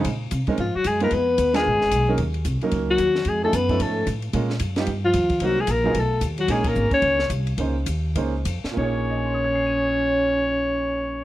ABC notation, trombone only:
X:1
M:4/4
L:1/8
Q:"Swing" 1/4=224
K:Bbm
V:1 name="Trombone" clef=bass
z4 F, G, A, B, | _C3 A,4- A, | z4 z G,3 | ^G, =A, _C2 A,2 z2 |
z4 z F,3 | G, A, B,2 =A,2 z ^F, | A, B,2 D3 z2 | z8 |
D8- | D8 |]